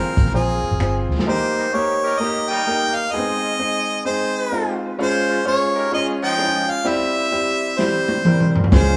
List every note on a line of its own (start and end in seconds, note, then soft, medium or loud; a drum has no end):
0.00 0.26 C4 medium
0.00 0.26 F4 medium
0.00 0.26 G#4 medium
0.00 0.34 A#4 medium
0.00 0.26 C5 medium
0.17 0.24 G#1 medium
0.17 kick medium
0.17 closed hi-hat medium
0.25 0.32 A#1 medium
0.25 snare soft
0.33 0.58 A#1 medium
0.33 0.73 C4 medium
0.33 0.72 F4 medium
0.33 0.73 G#4 medium
0.33 1.07 G#4 medium
0.33 0.73 C5 medium
0.63 muted fingered electric bass stroke soft
0.71 0.78 G#1 medium
0.79 1.05 G1 medium
0.79 1.19 C4 medium
0.79 1.19 F4 medium
0.79 1.19 G#4 medium
0.79 1.19 C5 medium
0.79 finger snap medium
1.09 1.16 D2 medium
1.19 snare medium
1.27 1.65 A#3 medium
1.27 1.66 D#4 medium
1.27 1.66 G4 medium
1.27 1.66 A#4 loud
1.27 1.76 C5 medium
1.55 1.69 G3 medium
1.55 1.69 A#3 medium
1.55 1.69 D#4 medium
1.73 1.97 A#3 medium
1.73 2.12 A#3 medium
1.73 1.97 D#4 medium
1.73 2.12 D#4 medium
1.73 1.97 G4 medium
1.73 2.12 G4 medium
1.73 2.13 A#4 medium
1.73 2.21 C#5 medium
2.03 2.17 D#4 loud
2.03 2.16 G4 loud
2.03 2.17 A#4 loud
2.19 2.58 A#3 medium
2.19 2.44 A#3 medium
2.19 2.44 D#4 medium
2.19 2.58 D#4 medium
2.19 2.44 G4 medium
2.19 2.59 G4 medium
2.19 2.59 A#4 medium
2.19 2.51 D#5 medium
2.49 2.94 G3 medium
2.49 2.94 A#3 medium
2.49 2.94 D#4 loud
2.49 2.97 G5 loud
2.67 3.05 A#3 medium
2.67 3.05 D#4 medium
2.67 3.05 G4 medium
2.67 3.06 A#4 medium
2.95 3.13 F5 medium
3.12 3.51 G#3 medium
3.12 3.20 B3 medium
3.12 3.52 D#4 medium
3.12 3.52 G#4 loud
3.12 4.05 D#5 loud
3.19 3.54 C4 medium
3.59 3.98 G#3 medium
3.59 3.98 C4 medium
3.59 3.98 D#4 medium
3.59 3.98 G#4 medium
4.05 4.44 G#3 medium
4.05 4.44 C4 medium
4.05 4.45 D#4 medium
4.05 4.45 G#4 medium
4.05 4.78 C5 medium
4.52 4.91 G#3 medium
4.52 4.91 C4 medium
4.52 4.91 D#4 medium
4.52 4.91 F4 medium
4.98 5.37 G#3 medium
4.98 5.38 C#4 medium
4.98 5.38 F4 medium
4.98 5.38 G#4 loud
4.98 5.44 C5 loud
5.29 5.42 G#3 medium
5.29 5.42 C#4 medium
5.29 5.42 F4 medium
5.44 5.84 G#3 medium
5.44 5.84 C#4 medium
5.44 5.70 C#4 medium
5.44 5.84 F4 medium
5.44 5.70 F4 medium
5.44 5.70 G#4 medium
5.44 5.84 G#4 medium
5.44 5.90 C#5 medium
5.76 5.89 D#4 loud
5.76 5.89 G4 loud
5.76 5.89 A#4 loud
5.91 6.30 G#3 medium
5.91 6.31 C#4 medium
5.91 6.17 C#4 medium
5.91 6.31 F4 medium
5.91 6.17 F4 medium
5.91 6.31 G#4 medium
5.91 6.17 G#4 medium
5.91 6.07 D#5 medium
6.22 6.66 F3 medium
6.22 6.66 G#3 medium
6.22 6.66 D#4 loud
6.22 6.72 G5 loud
6.38 6.77 G#3 medium
6.38 6.77 C#4 medium
6.38 6.46 E4 medium
6.38 6.77 G#4 medium
6.44 6.80 F4 medium
6.70 6.89 F5 medium
6.85 7.24 G3 loud
6.85 7.24 C4 medium
6.85 7.24 E4 medium
6.85 7.24 G4 loud
6.85 7.81 E5 loud
7.31 7.70 G3 medium
7.31 7.71 C4 medium
7.31 7.71 E4 medium
7.31 7.71 G4 medium
7.78 8.17 G3 medium
7.78 8.17 C4 medium
7.78 8.17 E4 medium
7.78 8.17 G4 medium
7.78 8.56 C5 medium
7.78 snare medium
8.08 high tom medium
8.25 8.64 G3 medium
8.25 8.64 C4 medium
8.25 8.65 E4 medium
8.25 8.65 A#4 medium
8.25 mid tom medium
8.40 mid tom medium
8.56 floor tom medium
8.64 floor tom medium
8.71 8.97 C#2 loud
8.71 8.97 F3 medium
8.71 8.97 G#3 medium
8.71 8.97 C#4 medium
8.71 8.97 F4 medium
8.71 8.97 G#4 loud
8.71 8.97 C5 medium
8.71 kick loud
8.71 snare loud
8.71 closed hi-hat medium